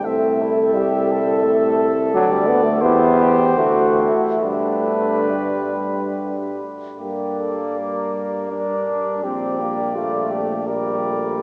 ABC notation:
X:1
M:3/4
L:1/16
Q:1/4=82
K:G
V:1 name="Cornet"
e12 | d4 c6 z2 | B8- B2 z2 | [K:Gm] d8 d4 |
d8 d4 |]
V:2 name="Flugelhorn"
C2 E2 G2 A6- | A4 E2 G2 F2 E2 | D8- D2 z2 | [K:Gm] G2 A2 B8 |
G4 F2 G2 B4 |]
V:3 name="Trombone section"
A12- | A4 G4 F4 | G8- G2 z2 | [K:Gm] B,8 D4 |
C2 B,2 A,4 G,4 |]
V:4 name="Euphonium" clef=bass
A,4 G,4 A,3 z | F, G, B, A, B,4 A,4 | A,4 G,6 z2 | [K:Gm] G,8 G,4 |
G,8 G,2 A,2 |]
V:5 name="Tuba" clef=bass
C,,12 | D,,4 E,,4 D,,2 z2 | G,,8- G,,2 z2 | [K:Gm] G,,12 |
B,,,12 |]